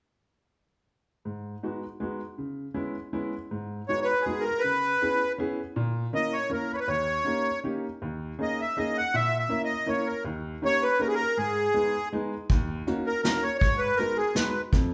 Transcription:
1.25 upright piano G#2
1.63 upright piano G#3 B3 D#4 F#4
2.00 upright piano G#3 B3 D#4 F#4
2.38 upright piano C#3
2.74 upright piano G#3 B3 C#4 E4
3.13 upright piano G#3 B3 C#4 E4
3.51 upright piano G#2
3.88 upright piano G#3 B3 D#4 F#4, accordion C#5
4.01 accordion B4 C#5
4.21 accordion G#4
4.26 upright piano G#3 B3 D#4 F#4
4.40 accordion A#4
4.59 accordion B4
4.64 upright piano C#3
5.01 upright piano B3 C#4 E4 G#4
5.38 upright piano B3 C#4 E4 G#4
5.76 upright piano A#2
6.13 upright piano A#3 C#4 E4 A#4, accordion D#5
6.33 accordion C#5
6.50 upright piano A#3 C#4 E4 A#4, accordion A#4
6.73 accordion B4 C#5
6.80 accordion B4
6.88 upright piano D#2, accordion C#5
7.25 upright piano A#3 C#4 D#4 G4
7.64 upright piano A#3 C#4 D#4 G4
8.02 upright piano D#2
8.39 upright piano A#3 C#4 D#4 G#4, accordion D#5
8.61 accordion E5
8.77 upright piano A#3 C#4 D#4 G#4, accordion D#5
8.98 accordion F#5
9.14 upright piano A#2, accordion E5
9.39 accordion E5
9.49 upright piano A#3 C#4 E4 A#4
9.65 accordion D#5
9.86 upright piano A#3 C#4 E4 A#4, accordion C#5
10.07 accordion A#4
10.24 upright piano D#2
10.62 upright piano A#3 C#4 D#4 G4, accordion C#5
10.83 accordion B4
10.99 upright piano A#3 C#4 D#4 G4, accordion A#4
11.07 accordion G#4
11.14 accordion A#4
11.37 upright piano G#2, accordion G#4
11.74 upright piano G#3 B3 D#4 G#4
12.12 upright piano G#3 B3 D#4 G#4
12.50 upright piano D#2, kick, closed hi-hat
12.87 upright piano A#3 C#4 D#4 F#4, closed hi-hat
13.07 accordion A#4
13.23 upright piano A#3 C#4 D#4 F#4, accordion A#4, snare, closed hi-hat
13.43 accordion C#5
13.59 upright piano G#2, accordion C#5, kick, closed hi-hat
13.78 accordion B4
13.96 upright piano G#3 B3 D#4 F#4, accordion A#4, closed hi-hat
14.17 accordion G#4
14.35 upright piano G#3 B3 D#4 F#4, accordion B4, snare, closed hi-hat
14.73 upright piano F2, kick, closed hi-hat

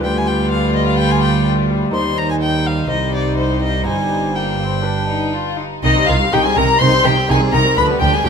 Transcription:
Already playing: viola section G3
0.00 lute D2 F4 B4, cello section D2, double bass section D2, violin section F4 B4, violin G5
0.17 violin G#5
0.27 violin G5
0.51 violin F5
0.76 violin D#5
0.87 violin F5
0.99 violin G5
1.11 violin G#5
1.23 violin G5
1.91 double bass section D#2, lute D#2 D#4 C5, cello section D#2, violin section D#4 C5, violin C6
2.18 violin A#5
2.30 violin G#5
2.42 violin G5
2.66 violin F5
2.87 double bass section C2, cello section C2, viola section G3, lute D#4 C5, violin D#5
3.14 violin D5
3.38 violin C5
3.62 violin D#5
3.83 double bass section G1, lute G2 D#4 C5, cello section G2, violin G#5
4.35 violin section A#3, violin G5
4.61 violin section C4
4.82 lute D4 B4, violin section B4
4.86 violin section D4
5.11 violin section D#4
5.36 violin section F4
5.60 violin section D#4
5.83 double bass section C2, cello section C3, lute C3, viola section D#3, violin D#4, violin section D#4 D#5
5.97 viola section G3, violin section C4
6.07 double bass section C2, lute C3, cello section C3, viola section D#3, violin section D#4 F5, violin F4
6.21 viola section G3, violin section C4
6.32 double bass section C2, cello section C3, lute C3 D#4 G4, viola section D#3, violin section D#4 G5, violin G4
6.44 viola section G3, violin section C4 G#5, violin G#4
6.56 double bass section C2, lute C3, cello section C3, viola section D#3, violin section D#4 A#5, violin A#4
6.70 viola section G3, violin section C4
6.80 double bass section C2, lute C3, cello section C3, viola section D#3, violin section D#4 C6, violin C5
6.94 viola section G3, violin section C4
7.03 double bass section C2, lute C3, cello section C3, viola section D#3, violin section D#4 G5, violin G4
7.16 viola section G3, violin section C4
7.28 double bass section C2, cello section C3, lute C3 D#4 G4, viola section D#3, violin section D#4 G#5, violin G#4
7.41 viola section G3, violin section C4
7.52 double bass section C2, lute C3, cello section C3, viola section D#3, violin section D#4 A#5, violin A#4
7.66 viola section G3, violin section C4
7.76 double bass section D2, lute D2, cello section D2, viola section F3, violin section D4 B5, violin B4
7.90 viola section G3, violin section B3
8.00 lute D2, cello section D2, double bass section D2, viola section F3, violin G4, violin section G5
8.04 violin section D4
8.14 viola section G3, violin section B3 G#5, violin G#4
8.24 lute D2 F4 G4, cello section D2, double bass section D2, viola section F3, violin section D4 G5, violin G4

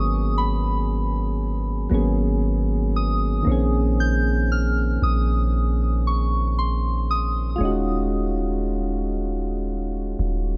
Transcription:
Already playing: 808-style bass G#1, synth keys F#3 A#3 B3 C#4 G#4, synth bell D#6
0.38 synth bell B5
1.90 808-style bass G#1, synth keys F#3 A#3 B3 C#4
1.94 synth keys G#4
2.96 synth bell D#6
3.42 synth keys D#3 A#3
3.47 808-style bass A#1, synth keys C4 C#4
3.52 synth keys G#4
4.00 synth bell G6
4.52 synth bell F6
5.02 808-style bass A#1, synth bell D#6
6.07 synth bell C#6
6.59 synth bell C6
7.11 synth bell D#6
7.56 synth keys G#3 F4
7.61 808-style bass D#1, synth keys C#4 D#4
7.65 synth keys F#4
10.19 808-style bass D#1

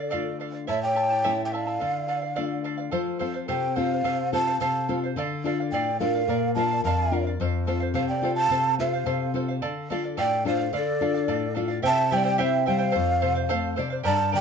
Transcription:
Already playing: nylon-string guitar D3, pan flute A4, quena D5
0.00 charango F5
0.10 nylon-string guitar A3 D4 F4, charango A4 D5 F5
0.40 charango A4 D5 F5
0.52 charango D5 F5
0.67 nylon-string guitar A2, charango E4 A4 C#5 E5 A5, pan flute C#5, quena E5
0.83 pan flute C#5, quena G5
0.95 charango E4 A4 E5 A5
1.10 charango E4 A4 A5
1.24 nylon-string guitar A3 C#4 E4, charango E4 A4 C#5 E5 A5
1.45 pan flute E5, quena G5
1.52 charango E4 A4 E5 A5, pan flute D5, quena F5
1.67 charango E4 A4 A5
1.80 nylon-string guitar D3, charango A4 D5 F5
2.08 charango A4 D5 F5
2.22 charango D5 F5
2.36 nylon-string guitar A3 D4 F4, charango A4 D5 F5
2.64 charango A4 D5 F5
2.77 charango D5 F5
2.91 nylon-string guitar F3, charango A4 C5 F5
3.19 nylon-string guitar C4 F4 A4, charango A4 C5 F5
3.34 charango C5 F5
3.48 nylon-string guitar C3, charango A4 C5 F5, pan flute C5, quena G5
3.75 nylon-string guitar C4 F4 A4, charango A4 C5 F5, pan flute C5, quena F5
3.91 charango C5 F5
4.04 nylon-string guitar C3, charango A4 C5 F5
4.32 nylon-string guitar C4 F4 A4, charango A4 C5 F5, pan flute F5, quena A5
4.47 charango C5 F5
4.61 nylon-string guitar C3, charango A4 C5 F5, pan flute F5, quena A5
4.89 nylon-string guitar C4 F4 A4, charango A4 C5 F5
5.04 charango C5 F5
5.16 nylon-string guitar D3, charango A4 D5 F5
5.44 nylon-string guitar D4 F4 A4, charango A4 D5 F5
5.60 charango D5 F5
5.71 nylon-string guitar A2, charango A4 D5 F5, pan flute D5, quena G5
5.98 nylon-string guitar D4 F4 A4, charango A4 D5, pan flute A#4, quena F5
6.02 charango F5
6.15 charango D5 F5
6.28 nylon-string guitar A#2, charango A#4 D5 F5
6.55 nylon-string guitar D4 F4 A#4, charango A#4 D5 F5, pan flute F5, quena A5
6.71 charango D5 F5
6.84 nylon-string guitar F2, charango A#4 D5 F5, pan flute F5, quena A5
7.11 nylon-string guitar D4 F4 A#4, charango A#4 D5 F5
7.27 charango D5 F5
7.40 nylon-string guitar F2, charango A4 C5 F5
7.67 nylon-string guitar C4 F4 A4, charango A4 C5 F5
7.80 charango C5 F5
7.94 nylon-string guitar C3, charango A4 C5 F5, pan flute C5, quena F5
8.08 pan flute D5, quena G5
8.22 nylon-string guitar C4 F4 A4, charango A4 C5 F5
8.35 charango C5 F5, pan flute F5, quena A5
8.50 nylon-string guitar C3, charango A4 C5 F5
8.78 nylon-string guitar C4 F4 A4, charango A4 C5 F5, pan flute C5, quena F5
8.93 charango C5 F5
9.06 nylon-string guitar C3, charango A4 C5 F5
9.34 nylon-string guitar C4 F4 A4, charango A4 C5 F5
9.48 charango C5 F5
9.62 nylon-string guitar D3, charango A4 D5 F5
9.90 nylon-string guitar D4 F4 A4, charango A4 D5 F5
10.04 charango D5 F5
10.17 nylon-string guitar A2, charango A4 D5 F5, pan flute D5, quena G5
10.45 nylon-string guitar D4 F4 A4, charango A4 D5 F5, pan flute C5, quena F5
10.58 charango D5 F5
10.73 nylon-string guitar D3, charango A4 D5 F5, pan flute A4, quena D5
11.01 nylon-string guitar D4 F4 A4, charango A4 D5 F5
11.14 charango D5 F5
11.28 nylon-string guitar A2, charango A4 D5 F5
11.55 nylon-string guitar D4 F4 A4, charango A4 D5 F5
11.68 charango D5 F5
11.82 nylon-string guitar C3, charango E4 G4 C5 E5 G5, quena A5
11.86 pan flute E5
12.11 nylon-string guitar G3, charango E4 C5 E5 G5, pan flute D5, quena G5
12.24 charango E4 C5 G5
12.38 nylon-string guitar C4, charango E4 G4 C5 E5 G5, pan flute C5, quena E5
12.66 nylon-string guitar G3, charango E4 C5 E5 G5, pan flute C5, quena F5
12.78 charango E4 C5 G5
12.92 charango A4 C5 F5
12.96 nylon-string guitar F2
13.21 nylon-string guitar C3, charango A4 C5 F5
13.35 charango C5 F5
13.49 nylon-string guitar A3 F5, charango A4 C5 F5
13.76 nylon-string guitar C3 D5, charango A4 C5 F5
13.90 charango C5 F5
14.03 nylon-string guitar G2, charango G4 A#4 D5 G5 A#5, pan flute D5, quena A5
14.32 nylon-string guitar D3, charango A#4 D5 G5 A#5, pan flute D5, quena G5

